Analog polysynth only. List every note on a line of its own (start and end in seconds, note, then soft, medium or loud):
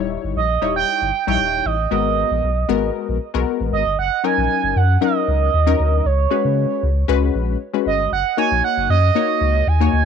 0.00 0.46 G3 medium
0.00 0.43 D#4 medium
0.00 0.43 E4 medium
0.00 0.43 C#5 loud
0.62 1.10 G3 medium
0.62 1.10 D#4 medium
0.62 1.11 E4 medium
0.62 1.11 C#5 medium
1.27 1.75 G3 medium
1.27 1.76 D#4 medium
1.27 1.76 E4 medium
1.27 1.76 C#5 medium
1.91 2.49 G#3 medium
1.91 2.50 B3 medium
1.91 2.50 F#4 medium
1.91 2.50 A#4 medium
2.69 3.17 G#3 medium
2.69 3.17 B3 medium
2.69 3.18 F#4 medium
2.69 3.18 A#4 loud
3.34 3.82 G#3 medium
3.34 3.82 B3 medium
3.34 3.83 F#4 medium
3.34 3.83 A#4 loud
4.24 4.82 F#3 medium
4.24 4.82 C#4 medium
4.24 4.82 D#4 medium
4.24 4.83 A#4 medium
5.01 5.50 F#3 medium
5.01 5.50 C#4 medium
5.01 5.50 D#4 medium
5.01 5.50 A#4 loud
5.66 6.05 F#3 medium
5.66 6.05 C#4 medium
5.66 6.05 D#4 medium
5.66 6.05 A#4 loud
6.30 6.89 G#3 medium
6.30 6.89 C#4 medium
6.30 6.89 F#4 medium
6.30 6.89 B4 medium
7.08 7.57 G#3 loud
7.08 7.57 C#4 medium
7.08 7.57 F#4 medium
7.08 7.57 B4 loud
7.74 8.12 G#3 medium
7.74 8.12 C#4 medium
7.74 8.12 F#4 medium
7.74 8.12 B4 medium
8.37 8.96 A#3 medium
8.37 8.96 D#4 medium
8.37 8.96 F#4 medium
8.37 8.96 C#5 medium
9.15 9.64 A#3 medium
9.15 9.64 D#4 medium
9.15 9.64 F#4 medium
9.15 9.64 C#5 medium
9.80 10.05 A#3 medium
9.80 10.05 D#4 medium
9.80 10.05 F#4 medium
9.80 10.05 C#5 medium